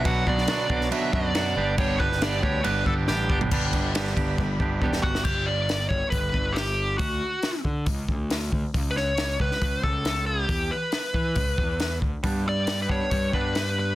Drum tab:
CC |x---x---x---x---|x---x---x-------|x---------------|x---------------|
RD |----------------|----------------|--x-x-x---------|----------------|
HH |----------------|----------------|----------------|----o---o---o---|
SD |---oo--o----o---|---oo-------o---|----oo-------o-o|----o-------o---|
FT |----------------|---------------o|----------------|----------------|
BD |o-o---o---o-----|o-o---o---o---o-|o-o---o-o-o-o-o-|o-----o-o-o-----|

CC |----------------|----------------|----------------|----------------|
RD |----------------|----------------|----------------|----------------|
HH |o---o---o---o---|o---o---o---o---|o---o---o---o---|o---o---o---o---|
SD |----o-------o---|--o-o--o----o---|----o-------o---|----o-------o---|
FT |----------------|----------------|----------------|----------------|
BD |o-----o-o-o---o-|o-----o-o-o-----|o-----o-o-o---o-|o-----o-o-o-----|